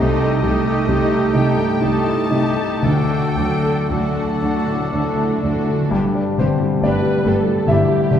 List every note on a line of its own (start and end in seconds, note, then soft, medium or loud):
0.00 2.80 C2 medium
0.00 0.08 C3 medium
0.00 1.79 A3 medium
0.00 0.43 A3 soft
0.00 5.53 A3 medium
0.00 0.43 D#4 medium
0.00 2.68 D#4 medium
0.00 0.40 G4 soft
0.00 1.79 G4 medium
0.00 0.40 A4 medium
0.00 1.32 D#5 medium
0.00 1.79 D#6 medium
0.22 0.57 A4 soft
0.41 0.51 C2 soft
0.41 0.52 C3 soft
0.41 0.79 G3 soft
0.41 0.88 A3 soft
0.41 0.88 D#4 soft
0.41 0.85 G4 soft
0.41 0.85 A4 soft
0.65 1.02 A4 soft
0.86 0.95 C2 soft
0.86 0.96 C3 soft
0.86 1.25 G3 soft
0.86 1.34 A3 soft
0.86 1.34 D#4 soft
0.86 1.32 G4 soft
0.86 1.32 A4 soft
1.11 1.49 A4 soft
1.33 1.42 C2 soft
1.33 1.42 C3 soft
1.33 1.81 A3 soft
1.33 1.72 D#4 soft
1.33 1.81 D#4 soft
1.33 1.79 G4 soft
1.33 1.80 A4 soft
1.33 1.83 G5 medium
1.56 1.96 G2 soft
1.81 1.90 C2 soft
1.81 1.91 C3 soft
1.81 2.31 A3 soft
1.81 2.83 A3 soft
1.81 2.22 D#4 soft
1.81 2.31 D#4 soft
1.81 2.29 G4 soft
1.81 2.85 G4 soft
1.81 2.29 A4 soft
1.81 2.85 A5 medium
1.81 2.86 D#6 soft
2.06 2.32 E4 soft
2.30 2.39 C2 soft
2.30 2.40 C3 soft
2.30 2.83 A3 soft
2.30 2.73 D#4 soft
2.30 2.84 D#4 soft
2.30 2.83 G4 soft
2.30 2.83 A4 soft
2.57 2.84 A4 soft
2.83 5.88 D2 soft
2.83 2.92 D2 soft
2.83 2.93 D3 soft
2.83 3.89 A3 soft
2.83 3.37 A3 soft
2.83 3.37 D4 soft
2.83 5.53 D4 soft
2.83 3.37 F#4 soft
2.83 3.90 A4 soft
2.83 3.37 A4 soft
2.83 3.92 G5 medium
2.83 3.90 D6 soft
3.09 3.53 A4 soft
3.37 3.46 D2 soft
3.37 3.47 D3 soft
3.37 3.80 F#3 soft
3.37 3.90 A3 soft
3.37 3.90 D4 soft
3.37 3.89 F#4 soft
3.37 3.89 A4 soft
3.51 3.58 D3 soft
3.60 3.67 D3 soft
3.60 4.06 A4 soft
3.69 3.77 D3 soft
3.90 3.98 D2 soft
3.90 3.99 D3 soft
3.90 4.32 F#3 soft
3.90 5.53 A3 soft
3.90 4.41 A3 soft
3.90 4.41 D4 soft
3.90 4.41 F#4 soft
3.90 4.41 A4 soft
3.90 5.53 A4 soft
3.90 5.44 F#5 soft
3.90 5.53 D6 soft
3.96 4.05 D3 soft
4.06 4.13 D3 soft
4.14 4.22 D3 soft
4.14 4.57 A4 soft
4.24 4.30 D3 soft
4.32 4.40 D3 soft
4.41 4.50 D2 soft
4.41 4.49 D3 soft
4.41 4.50 D3 soft
4.41 4.91 A3 soft
4.41 4.83 D4 soft
4.41 4.91 D4 soft
4.41 4.91 F#4 soft
4.41 4.91 A4 soft
4.50 4.57 D3 soft
4.58 4.66 D3 soft
4.67 5.07 A2 soft
4.67 4.74 D3 soft
4.75 4.83 D3 soft
4.85 4.92 D3 soft
4.92 5.00 D2 soft
4.92 5.01 D3 soft
4.92 5.01 D3 medium
4.92 5.42 A3 soft
4.92 5.42 D4 soft
4.92 5.33 D4 soft
4.92 5.42 F#4 soft
4.92 5.42 A4 soft
5.02 5.09 D3 soft
5.10 5.18 D3 soft
5.17 5.28 D3 soft
5.17 5.43 E4 soft
5.29 5.37 D3 medium
5.38 5.46 D3 medium
5.43 5.51 D2 soft
5.43 5.52 D3 soft
5.43 5.92 A3 soft
5.43 5.83 D4 soft
5.43 5.92 D4 soft
5.43 5.92 F#4 soft
5.43 5.92 A4 soft
5.47 5.55 D3 medium
5.56 5.63 D3 medium
5.64 5.72 D3 medium
5.64 5.92 A4 soft
5.73 5.80 D3 medium
5.81 5.89 D3 medium
5.91 6.00 G1 medium
5.91 8.20 G2 medium
5.91 6.01 G2 medium
5.91 6.02 D4 medium
5.91 6.02 G4 medium
5.91 6.02 B4 soft
6.15 6.52 D4 soft
6.38 6.46 G1 soft
6.38 6.47 G2 medium
6.38 6.74 D3 soft
6.38 6.81 C4 soft
6.38 6.48 D4 soft
6.38 6.48 G4 soft
6.38 6.48 B4 soft
6.38 6.80 C5 medium
6.60 6.96 G3 soft
6.81 6.91 G1 medium
6.81 6.92 G2 soft
6.81 7.04 A3 soft
6.81 6.93 D4 soft
6.81 6.93 G4 soft
6.81 6.92 B4 soft
6.81 7.24 B4 medium
6.81 7.65 D5 medium
6.85 7.65 D4 soft
7.02 7.37 G3 soft
7.24 7.34 G1 soft
7.24 7.34 G2 medium
7.24 7.46 A3 soft
7.24 7.35 D4 soft
7.24 7.35 G4 soft
7.24 7.69 A4 medium
7.28 7.36 B4 soft
7.46 7.81 G3 soft
7.67 7.77 G1 medium
7.67 7.77 G2 soft
7.67 8.02 D3 soft
7.67 7.79 D4 soft
7.67 8.20 E4 soft
7.67 8.20 G4 medium
7.67 7.78 G4 soft
7.67 7.78 B4 soft
7.67 8.20 E5 medium
7.88 8.20 G3 soft
8.11 8.20 G1 soft
8.11 8.20 G2 soft
8.11 8.20 D3 soft
8.11 8.20 D4 soft
8.11 8.20 G4 soft
8.11 8.20 B4 soft